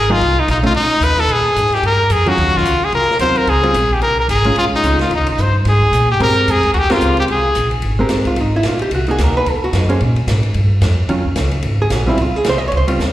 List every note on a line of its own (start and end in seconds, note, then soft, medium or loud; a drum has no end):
0.00 0.20 G#1 medium
0.00 0.13 G#4 medium
0.10 0.20 F#3 medium
0.10 0.20 A#3 medium
0.10 0.20 D#4 medium
0.10 0.41 F4 medium
0.21 0.47 C2 medium
0.21 ride medium
0.40 0.50 D#4 medium
0.48 0.73 A#1 medium
0.48 0.57 D#4 medium
0.48 hi-hat pedal soft
0.48 ride medium
0.63 0.74 A3 medium
0.63 0.74 C#4 medium
0.63 0.75 D#4 medium
0.63 0.71 F4 medium
0.63 ride soft
0.74 0.89 B1 medium
0.74 1.05 D#4 medium
0.74 ride soft
0.90 muted upright bass stroke soft
1.00 1.27 D#2 medium
1.00 1.21 B4 medium
1.00 hi-hat pedal medium
1.00 ride medium
1.18 1.34 A4 medium
1.18 snare medium
1.18 ride soft
1.28 1.55 A#2 medium
1.28 ride medium
1.32 1.75 G#4 medium
1.56 1.82 G#2 medium
1.56 hi-hat pedal medium
1.56 ride medium
1.66 snare soft
1.72 1.85 G4 medium
1.72 snare soft
1.72 ride soft
1.83 2.09 G2 medium
1.83 2.13 A#4 medium
1.83 ride soft
2.10 2.37 F2 medium
2.10 2.30 G#4 medium
2.10 hi-hat pedal medium
2.10 ride medium
2.26 2.63 D#3 medium
2.26 2.63 F#3 medium
2.26 2.64 C#4 medium
2.26 2.63 F4 medium
2.26 2.58 F#4 medium
2.26 ride soft
2.38 2.49 D#2 medium
2.38 ride medium
2.47 2.55 C#2 medium
2.47 snare soft
2.56 2.65 A#1 medium
2.56 2.86 F4 medium
2.56 snare soft
2.65 2.80 C#2 medium
2.65 hi-hat pedal medium
2.65 ride medium
2.81 2.94 G#4 medium
2.81 muted upright bass stroke soft
2.92 3.07 C2 medium
2.92 3.19 A#4 medium
2.92 ride soft
3.02 snare soft
3.08 muted upright bass stroke soft
3.08 snare soft
3.19 3.46 D#2 medium
3.19 3.48 F#3 soft
3.19 3.48 C4 soft
3.19 3.49 F4 soft
3.19 3.39 C5 medium
3.19 hi-hat pedal medium
3.19 ride medium
3.36 3.51 A#4 medium
3.36 ride soft
3.46 3.73 C#2 medium
3.46 3.95 G#4 loud
3.46 ride medium
3.63 3.74 G3 medium
3.63 3.74 C4 medium
3.63 3.74 F4 medium
3.63 ride soft
3.74 4.01 A#1 medium
3.74 hi-hat pedal medium
3.74 ride medium
3.93 4.02 G4 medium
4.01 4.28 C2 medium
4.01 4.17 A#4 medium
4.01 ride soft
4.20 4.29 A#4 medium
4.28 4.55 G#1 medium
4.28 4.55 G#4 medium
4.28 hi-hat pedal medium
4.28 ride medium
4.44 4.82 G#3 medium
4.44 4.82 C#4 medium
4.44 4.82 F4 medium
4.44 ride soft
4.56 4.71 A#1 medium
4.56 4.65 F4 medium
4.56 ride medium
4.72 4.99 D#4 medium
4.72 muted upright bass stroke soft
4.83 5.10 C#2 medium
4.83 4.98 G#3 soft
4.83 4.98 C#4 soft
4.83 4.99 F4 medium
4.83 hi-hat pedal medium
4.83 ride medium
4.99 5.11 F4 medium
4.99 snare medium
4.99 ride soft
5.10 5.20 D#2 medium
5.10 ride medium
5.15 5.28 D#4 medium
5.20 5.28 C#2 medium
5.27 5.37 A#1 medium
5.27 5.43 D#4 medium
5.27 ride medium
5.38 5.65 G2 medium
5.38 5.56 C5 medium
5.38 hi-hat pedal medium
5.65 5.92 G#2 medium
5.65 6.07 G#4 medium
5.65 snare soft
5.65 ride medium
5.82 kick medium
5.92 6.19 A#2 medium
5.92 hi-hat pedal medium
5.92 ride medium
6.11 6.21 G4 medium
6.20 6.46 G2 medium
6.20 6.60 G#3 medium
6.20 6.60 C4 medium
6.20 6.60 G4 medium
6.20 6.60 A#4 medium
6.20 6.52 A#4 loud
6.20 ride medium
6.47 6.73 F2 medium
6.47 6.73 G#4 medium
6.47 hi-hat pedal medium
6.47 ride medium
6.63 kick soft
6.63 ride soft
6.74 6.89 D#2 medium
6.74 6.80 F#4 medium
6.74 ride medium
6.79 6.94 G4 medium
6.90 7.26 G#3 medium
6.90 7.26 C4 medium
6.90 7.18 F4 medium
6.90 7.27 G4 medium
6.90 7.27 A#4 medium
6.90 muted upright bass stroke soft
6.90 snare medium
6.90 ride medium
7.01 7.28 C#2 medium
7.01 hi-hat pedal medium
7.17 7.24 G4 medium
7.17 ride soft
7.28 7.55 C2 medium
7.28 7.70 G#4 medium
7.28 ride soft
7.55 7.82 A#1 medium
7.55 hi-hat pedal medium
7.55 ride medium
7.71 ride soft
7.82 8.09 G#1 medium
7.82 ride medium
7.99 8.35 G#3 medium
7.99 8.36 C4 medium
7.99 8.27 G4 medium
7.99 8.36 A#4 medium
8.09 8.24 G1 medium
8.09 snare medium
8.09 hi-hat pedal medium
8.09 ride medium
8.25 8.38 F4 medium
8.25 muted upright bass stroke soft
8.25 kick medium
8.25 ride soft
8.36 8.63 G#1 medium
8.36 ride medium
8.41 8.54 D#4 medium
8.56 8.66 E4 medium
8.63 8.90 A#1 medium
8.63 snare medium
8.63 hi-hat pedal soft
8.63 ride medium
8.68 8.81 F4 medium
8.79 8.92 G4 loud
8.79 ride soft
8.91 9.18 C2 medium
8.91 9.08 F#4 medium
8.91 ride medium
9.07 9.44 A#3 medium
9.07 9.44 D#4 medium
9.07 9.45 F#4 medium
9.07 ride soft
9.11 9.20 G#4 loud
9.18 9.33 D2 medium
9.18 snare medium
9.18 hi-hat pedal medium
9.18 ride medium
9.24 9.37 A#4 medium
9.34 9.50 B4 loud
9.34 muted upright bass stroke soft
9.46 9.72 D#2 medium
9.46 ride medium
9.50 9.64 A4 medium
9.64 9.77 F#4 medium
9.73 10.00 F#2 medium
9.73 snare medium
9.73 hi-hat pedal medium
9.73 ride medium
9.77 9.90 D#4 medium
9.89 9.99 A#3 medium
9.89 9.99 C#4 medium
9.89 10.00 G#4 medium
9.89 10.00 C5 medium
9.89 ride soft
10.00 10.27 A#2 medium
10.00 ride soft
10.16 ride soft
10.27 10.54 G#2 medium
10.27 snare medium
10.27 hi-hat pedal medium
10.27 ride medium
10.43 ride soft
10.54 10.80 G2 medium
10.54 ride soft
10.81 11.08 F2 medium
10.81 snare medium
10.81 hi-hat pedal soft
10.81 ride medium
11.09 11.35 D#2 medium
11.09 11.23 D#3 medium
11.09 11.24 F#3 medium
11.09 11.24 C#4 medium
11.09 11.24 F4 medium
11.09 ride medium
11.25 kick soft
11.36 11.63 C#2 medium
11.36 snare medium
11.36 hi-hat pedal medium
11.36 ride medium
11.51 ride soft
11.62 11.89 G#1 medium
11.62 ride medium
11.82 11.95 G#4 medium
11.90 12.17 A#1 medium
11.90 snare medium
11.90 hi-hat pedal medium
11.90 ride medium
11.95 12.07 F#4 medium
12.07 12.17 G3 medium
12.07 12.17 C4 medium
12.07 12.19 E4 medium
12.07 12.17 F4 medium
12.17 12.32 C#2 medium
12.17 ride medium
12.22 12.36 F4 medium
12.33 12.46 G#4 medium
12.33 muted upright bass stroke soft
12.44 12.71 C2 medium
12.44 snare medium
12.44 hi-hat pedal medium
12.44 ride medium
12.49 12.58 C5 medium
12.58 12.65 D#5 loud
12.68 12.74 C#5 medium
12.68 ride soft
12.72 12.98 C#2 medium
12.77 12.85 C5 medium
12.87 12.98 G3 medium
12.87 12.98 C4 medium
12.87 12.99 F4 medium
12.87 ride medium
12.99 13.13 D#2 medium
12.99 snare medium
12.99 hi-hat pedal medium